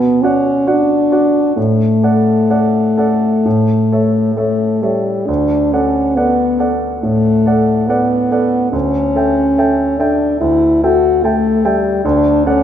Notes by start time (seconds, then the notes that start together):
Already playing: B2 B3
0.22 C#4 F#4 D5 F#5
0.67 D4 F#4 D5 F#5
1.12 F#4 D5 F#5
1.56 A2 A3
2.03 A4 D5 F#5
2.50 A4 D5 F#5
2.98 A4 D5 F#5
3.46 A2
3.92 A4 C#5 E5
4.36 A3 A4 C#5 E5
4.82 G3 A4 C#5 E5
5.26 D2 D4
5.72 C#4 A4 D5 F#5
6.16 B3 A4 D5 F#5
6.59 A4 D5 F#5
7.02 A2 A3
7.46 A4 D5 F#5
7.89 B3 A4 D5 F#5
8.32 A4 D5 F#5
8.72 D2 C#4
9.16 A4 E5 G5
9.58 A4 E5 G5
9.98 D4 A4 E5 G5
10.40 D2 E4
10.83 F#4 A4 E5 G5
11.24 A3 A4 E5 G5
11.65 G3 A4 E5 G5
12.04 D2 D4
12.46 C#4 A4 D5 F#5